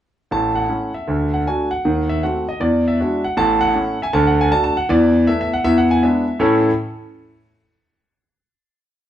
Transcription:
0.31 A1 A2 A5
0.55 F#5
0.68 A3 C#4 E4
0.94 E5
1.07 D2 D3
1.34 F#5
1.47 A3 D4 F#4 G#5
1.71 F#5
1.85 D#2 D#3
2.09 E5
2.23 A3 C4 F#4 F#5
2.49 D#5
2.60 E2 E3 D5
2.88 E5
3.00 G#3 D4 F#4
3.24 F#5
3.37 A1 A2 A5
3.61 F#5
3.75 A3 C#4 E4
4.02 E5 G#5
4.13 D2 D3 A5
4.27 F#5
4.41 G#5
4.51 A3 D4 F#4 A5
4.64 A5
4.77 F#5
4.89 E2 E3 D5
5.27 A3 B3 E4 E5
5.41 E5
5.54 F#5
5.64 E2 E3 E5
5.78 F#5
5.91 G#5
6.02 G#3 B3 D4 E5
6.40 A2 E3 C#4 E4 A4 C#5 A5

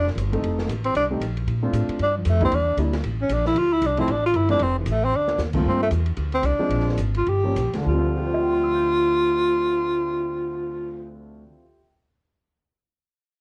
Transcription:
Already playing: F1
0.07 snare
0.15 G1, hi-hat pedal, ride
0.32 A3 C4 D#4 A4, ride
0.42 F1, ride
0.59 snare
0.68 A1, hi-hat pedal, ride
0.84 C4, ride
0.95 C2 D4, ride
1.10 A3 C4 D#4 G4
1.20 A#1, hi-hat pedal, ride
1.37 ride
1.47 A#2, ride
1.62 A3 C4 D4 F4
1.73 A2, hi-hat pedal, ride
1.88 muted upright bass stroke, ride
1.99 G2 D4, ride
2.18 F3
2.25 F2, hi-hat pedal, ride
2.30 A3
2.41 G3 A#3 D4 E4, kick, ride
2.45 C4
2.52 E2 D4, ride
2.77 D2 G3 A#3 D4 E4, hi-hat pedal, ride
2.93 snare, ride
3.04 A1, ride
3.22 C#4
3.29 A#1 D4, hi-hat pedal, ride
3.46 E4, snare
3.55 D2 F4, ride
3.73 E4
3.82 C2, hi-hat pedal, ride
3.86 D4
3.97 F3 A3 C4 E4, ride
4.08 A1 D4, ride
4.26 F4
4.34 G1 E4, hi-hat pedal, ride
4.48 F3 A3 C4 D4 E4, ride
4.59 F1 C4, ride
4.79 E3
4.86 A1, hi-hat pedal, ride
4.91 A3
5.05 C4
5.13 D2 D4
5.27 snare
5.38 D#2, snare, hi-hat pedal
5.53 G2 A3 A#3 C4 F4, kick, crash
5.65 G2 C4
5.83 A3
5.91 E2, hi-hat pedal, ride
6.06 ride
6.17 D2, ride
6.32 C4, ride
6.42 C2 D4, hi-hat pedal, ride
6.58 F3 G#3 C4 D4, muted upright bass stroke
6.69 A#1, ride
6.80 snare
6.89 snare
6.97 G#1, hi-hat pedal, ride
7.15 F4, ride
7.26 G1 G4, ride
7.43 F3 G3 A#3 C#4
7.55 A#1, hi-hat pedal, ride
7.74 D2, muted upright bass stroke, snare, ride
7.79 D3
7.84 D2 F3
7.88 G3 F4
7.94 C4
7.99 F4
8.18 G4
8.25 C5
8.34 E5
8.43 G5
8.53 C6
8.64 E6
8.75 G6

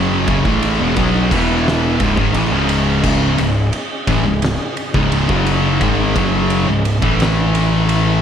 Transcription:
Already playing: F#1 F#2 C#3 F#3 C#4 G#4 D#5
0.28 F#1 F#2 C#3, kick, ride
0.45 A1 A2 E3 A3, kick
0.63 ride
0.79 E1 E2 B2
0.97 B1 B2 F#3 B3, kick, ride
1.30 E1 E2 B2 E3 E4 B4 F#5, kick, snare, crash
1.68 snare
1.99 C#1 C#2 G#2 C#4 G#4 D#5, kick, ride
2.17 G#1 G#2 D#3, kick
2.34 A1 A2 E3, ride
2.51 C#1 C#2 G#2 C#3
2.69 ride
3.04 C#1 C#2 G#2 C#3, kick, crash
3.38 C#1 C#2 G#2, ride
3.73 ride
4.07 A1 A2 E3, kick, snare, ride
4.25 C#1 C#2 G#2
4.42 snare, ride
4.77 ride
4.94 C#1 C#2 G#2 C#3, kick
5.12 ride
5.29 F#1 F#2 C#3 F#3, kick
5.47 ride
5.81 G#1 G#2 D#3 G#3, kick, ride
6.15 F#1 F#2 C#3 F#3, kick, ride
6.50 ride
6.68 C#1 C#2 G#2
6.85 ride
7.01 A1 A2 E3 A3 E4 B4, kick
7.20 snare, ride
7.55 ride
7.89 ride

